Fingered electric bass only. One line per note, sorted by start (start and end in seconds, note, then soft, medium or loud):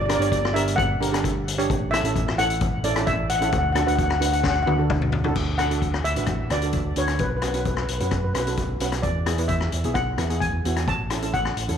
0.00 0.18 G1 loud
0.19 0.96 G1 medium
1.00 1.65 G1 medium
1.70 2.02 A1 loud
2.03 2.80 A1 loud
2.83 3.48 A1 medium
3.52 3.85 D2 loud
3.87 4.63 D2 medium
4.67 5.32 D2 medium
5.36 6.01 D2 medium
6.04 6.15 D2 medium
6.16 6.48 A1 medium
6.50 6.83 D2 medium
6.84 6.95 D2 medium
6.96 7.18 D2 medium
7.19 7.84 B1 medium
7.89 8.00 B1 medium
8.00 8.32 F#2 medium
8.34 8.67 B1 medium
8.68 8.79 B1 medium
8.80 9.02 B1 medium
9.03 9.68 E2 medium
9.72 9.84 E2 medium
9.84 10.16 B1 medium
10.18 10.51 E2 medium
10.52 10.63 E2 medium
10.64 10.86 E2 medium
10.87 11.53 A1 medium
11.56 11.68 A1 medium
11.68 11.78 E2 medium